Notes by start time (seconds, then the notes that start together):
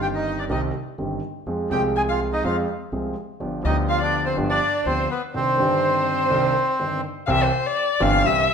Already playing: G1 G2 D#3 G3 C4 G4
0.02 G4 G5
0.15 D#4 D#5
0.39 D4 D5
0.49 C2 C3 D#3 G3 C4 D#4 G4 D#5
0.98 G1 G2 D#3 G3 C4 G4
1.46 F2 F3 G#3 C4 G#4
1.69 C2 C3 F3 G#3 C4 G4 G#4 G5
1.96 G#4 G#5
2.09 F4 F5
2.33 D#4 D#5
2.44 F2 F3 G#3 C4 F4 G#4 F5
2.92 C2 C3 F3 G#3 C4 G#4
3.40 G1 G2 F3 B3 D4 G4
3.63 D2 D3 F3 B3 D4 D#4 G4 D#5
3.89 F4 F5
4.01 D4 D5
4.26 C4 C5
4.37 G1 G2 F3 B3 D4 G4
4.50 D4 D5
4.86 D2 D3 F3 B3 C4 D4 G4 C5
5.11 B3 B4
5.34 C2 C3 D#3 C4 D4 G4 C5
5.57 G1 G2 D#3 C4 D4
5.61 G4
6.30 C2 C3 D#3 C4 D4 G4
6.79 G1 G2 D#3 C4 D4 G4
7.26 C2 C3 E3 G3 C4 G4 E5 F5
7.43 C5
7.66 D5
8.00 G1 G2 E3 G3 C4 G4 F5
8.24 C2 C3 E3 G3 C4 G4 E5